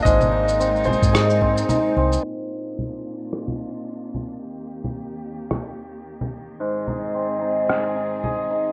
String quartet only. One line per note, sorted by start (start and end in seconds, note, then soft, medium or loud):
0.04 2.21 G#3 medium
0.04 2.21 C4 medium
0.04 2.21 D#4 medium
2.23 4.40 A#2 medium
2.23 6.56 A#3 medium
2.23 4.40 D4 medium
2.23 4.40 F4 medium
4.41 6.58 D#2 medium
4.41 8.72 D#3 medium
4.41 6.58 G4 medium
6.59 8.72 G#2 medium
6.59 8.72 C4 medium
6.59 8.72 G#4 medium